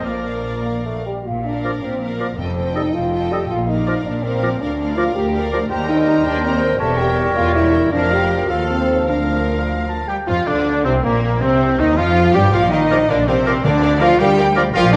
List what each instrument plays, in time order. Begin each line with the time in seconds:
0.04 double bass section A#1, bassoon F3, cello section A#3, french horn section A#4 D5, viola section A#4, clarinet A#4, oboe D5, violin section D5 F5, flute D5
0.65 bassoon A#3
0.85 bassoon A3
1.05 bassoon G3, french horn section G4, flute G5
1.25 double bass section A#1, cello section A#2, french horn section F4, flute F5
1.45 french horn section D4, viola section A#4, violin section D5 F5, flute D5
1.65 bassoon F3, clarinet A#4, oboe D5
1.83 double bass section A#1, cello section A#2, french horn section C4, flute C5
2.02 french horn section A#3, viola section A#4, flute A#4, violin section D5 F5
2.20 bassoon F3, clarinet A#4, oboe D5
2.38 double bass section F1, timpani F2, cello section F2, french horn section C4, viola section A4, flute C5, violin section D#5 G5
2.57 viola section A4, violin section D#5 G5
2.75 bassoon G3, french horn section D#4, clarinet A4, oboe D#5, flute D#5
2.94 double bass section F1, cello section F2, french horn section F4, flute F5
3.12 viola section A4, violin section D#5 G5
3.31 bassoon G3, french horn section G4, clarinet A4, oboe D#5, flute G5
3.50 double bass section A#1, cello section A#2, french horn section F4, flute F5
3.68 french horn section D#4, viola section A#4, violin section D5 F5, flute D#5
3.87 bassoon F3, clarinet A#4, oboe D5
4.05 double bass section A#1, cello section A#2, french horn section D4, flute D5
4.23 french horn section C4, viola section A#4, flute C5, violin section D5 F5
4.43 bassoon F3, clarinet A#4, oboe D5
4.61 double bass section D2, cello section D2, french horn section D4, viola section A#4, violin section D5 F5, flute D5
4.79 viola section A#4, violin section D5 F5
4.96 bassoon F3, french horn section F4, clarinet A#4, oboe D5, flute F5
5.15 cello section D2, double bass section D2, french horn section G4, flute G5
5.34 viola section A#4, violin section D5 F5
5.52 bassoon F3, clarinet A#4, oboe D5
5.70 double bass section D#2, cello section D#2, bassoon G3, viola section G4, french horn section G4, clarinet A#4, violin section C5 A#5, oboe C5, flute G5
5.88 french horn section D#4, viola section A#4, flute D#5, violin section D#5 G5
6.06 viola section G4, violin section C5 A#5
6.24 double bass section D#2, cello section D#2, french horn section D4, viola section A#4, flute D5, violin section D#5 G5
6.43 french horn section C4, viola section G4, flute C5, violin section C5 A#5
6.61 viola section A#4, violin section D#5 G5
6.79 double bass section E1, cello section E2, bassoon G3, viola section G4, french horn section A4, clarinet A#4, oboe C#5, violin section C#5 E5, flute A5
6.97 french horn section G4, viola section A#4, violin section E5 G5, flute G5
7.17 viola section G4, violin section C#5 E5
7.35 double bass section E1, cello section E2, french horn section F4, viola section A#4, violin section E5 G5, flute F5
7.54 french horn section E4, viola section G4, violin section C#5 E5, flute E5
7.72 viola section A#4, violin section E5 G5
7.90 double bass section F1, cello section F2, bassoon F3, french horn section D4, viola section A#4, clarinet A#4, flute D5, violin section D5 F5, oboe F5
8.11 french horn section G4, flute G5
8.48 double bass section D#2, cello section D#2, bassoon F3, french horn section F4, viola section A4, clarinet A4, flute F5, violin section F5, oboe F5
8.69 french horn section C4, flute C5
9.09 double bass section D2, cello section D2, bassoon F3, french horn section D4, clarinet A#4, viola section A#4, flute D5, violin section F5, oboe F5
9.69 oboe F5
9.89 oboe A5
10.07 cello section G3, french horn section G4, trumpet G4, violin section G5, flute G5, oboe G5
10.27 double bass section F2, cello section F3, bassoon F3, french horn section F4, clarinet F4, violin section F4 F5, trumpet F4, viola section F4, oboe F4, flute F5
10.46 double bass section D2, bassoon D3, cello section D3, viola section D4, oboe D4, violin section D4 D5, french horn section D4, trumpet D4, clarinet D4, flute D5
10.84 double bass section C2, cello section C3, bassoon C3, french horn section C4, viola section C4, violin section C4 C5, oboe C4, trumpet C4, clarinet C4, flute C5
11.02 double bass section A#1, cello section A#2, bassoon A#2, french horn section A#3, violin section A#3 A#4, viola section A#3, oboe A#3, trumpet A#3, clarinet A#3, flute A#4
11.41 double bass section C2, cello section C3, bassoon C3, french horn section C4, clarinet C4, oboe C4, trumpet C4, viola section C4, violin section C4 C5, flute C5
11.79 double bass section D#2, cello section D#3, bassoon D#3, oboe D#4, clarinet D#4, french horn section D#4, violin section D#4 D#5, viola section D#4, trumpet D#4, flute D#5
11.97 double bass section F2, cello section F3, bassoon F3, clarinet F4, oboe F4, trumpet F4, french horn section F4, violin section F4 F5, viola section F4, flute F5
12.34 double bass section G2, cello section G3, bassoon G3, viola section G4, oboe G4, french horn section G4, trumpet G4, clarinet G4, violin section G4 G5, flute G5
12.53 double bass section A#1, cello section F3, french horn section F4, trumpet F4, viola section A#4 D5, flute F5, violin section F5
12.72 cello section D#3, trumpet D#4, french horn section D#4, viola section A#4 D5, flute D#5, violin section D#5 F5
12.91 bassoon F3, clarinet A#4, viola section A#4 D5, oboe D5, violin section F5
13.08 double bass section A#1, cello section D3, french horn section D4, trumpet D4, viola section A#4 D5, flute D5, violin section D5 F5
13.27 cello section C3, trumpet C4, french horn section C4, viola section A#4 D5, flute C5, violin section C5 F5
13.46 bassoon F3, clarinet A#4, viola section A#4 D5, oboe D5, violin section F5
13.64 double bass section D2, cello section D3, timpani D3, trumpet D4, french horn section D4, viola section A#4 D5, flute D5, violin section D5 F5
13.82 viola section A#4 D5, violin section F5
14.00 cello section F3, bassoon F3, trumpet F4, french horn section F4, viola section A#4 D5, clarinet A#4, oboe D5, violin section F5, flute F5
14.19 double bass section D2, cello section G3, trumpet G4, french horn section G4, viola section A#4 D5, violin section F5 G5, flute G5
14.38 viola section A#4 D5, violin section F5
14.56 bassoon F3, clarinet A#4, viola section A#4 D5, oboe D5, violin section F5
14.74 double bass section A#1, cello section F3, bassoon G3, trumpet F4, french horn section F4, clarinet A#4, viola section A#4 D5, oboe D5, violin section F5 G5, flute F5
14.92 cello section D3, trumpet D4, french horn section D4, violin section D5, flute D5, viola section D5